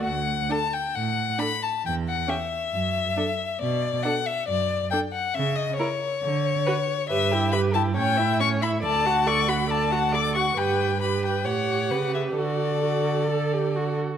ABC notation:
X:1
M:4/4
L:1/8
Q:1/4=136
K:D
V:1 name="Violin"
f2 a g f2 b a | g f e6 | d2 f e d2 g f | e _e c6 |
e2 b a g2 c' b | a2 c' b a2 d' c' | g2 b g f3 e | d6- d z |]
V:2 name="Violin"
z2 A2 z2 A2 | z2 G2 z2 A2 | z2 A2 z2 A2 | z2 ^A2 z2 B2 |
B G B G c e c e | d f d f d f d f | B2 B2 c2 B2 | A6- A z |]
V:3 name="Viola"
z2 D2 z2 D2 | z2 C2 z2 D2 | z2 D2 z2 D2 | z2 E2 z2 F2 |
G E G E C E C E | A F A F A F A F | G2 G2 G4 | F2 F2 A G F2 |]
V:4 name="Cello" clef=bass
D,,2 z2 A,,2 z2 | E,,2 z2 F,,2 z2 | B,,2 z2 F,,2 z2 | C,2 z2 D,2 z2 |
G,,4 A,,4 | D,,8 | G,,4 A,,2 C,2 | D,6- D, z |]